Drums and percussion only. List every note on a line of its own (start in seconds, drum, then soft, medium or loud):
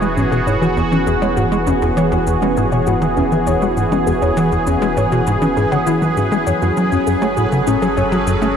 0.02 shaker soft
0.17 shaker medium
0.32 percussion blips medium
0.32 shaker soft
0.47 shaker medium
0.62 shaker soft
0.77 shaker soft
0.92 shaker soft
1.07 shaker medium
1.22 percussion blips medium
1.22 shaker soft
1.37 shaker medium
1.52 shaker soft
1.67 shaker medium
1.82 shaker soft
1.97 shaker medium
2.12 percussion blips medium
2.12 shaker soft
2.27 shaker loud
2.42 shaker soft
2.57 shaker medium
2.72 shaker soft
2.87 shaker medium
3.02 percussion blips medium
3.02 shaker soft
3.17 shaker soft
3.32 shaker soft
3.47 shaker medium
3.62 shaker soft
3.77 shaker medium
3.92 percussion blips medium
3.92 shaker soft
4.07 shaker medium
4.22 shaker soft
4.37 shaker medium
4.52 shaker soft
4.67 shaker medium
4.82 percussion blips medium
4.82 shaker soft
4.97 shaker medium
5.12 shaker soft
5.27 shaker medium
5.42 shaker soft
5.57 shaker soft
5.72 percussion blips medium
5.72 shaker soft
5.87 shaker medium
6.02 shaker soft
6.17 shaker medium
6.32 shaker soft
6.47 shaker medium
6.62 shaker soft
6.77 shaker medium
6.92 shaker soft
7.07 shaker medium
7.22 percussion blips medium
7.22 shaker soft
7.37 shaker medium
7.52 shaker soft
7.67 shaker medium
7.82 shaker soft
7.97 shaker soft
8.12 percussion blips medium
8.12 shaker soft
8.27 shaker medium
8.42 shaker soft